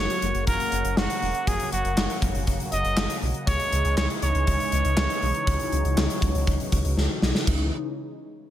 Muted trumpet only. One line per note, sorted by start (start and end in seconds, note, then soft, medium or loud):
0.00 0.44 C#5 loud
0.47 0.99 A#4 loud
0.97 1.49 F#4 medium
1.47 1.72 G#4 loud
1.72 2.19 F#4 medium
2.72 3.19 D#5 loud
3.48 3.94 C#5 loud
3.97 4.09 C#5 loud
4.22 6.93 C#5 loud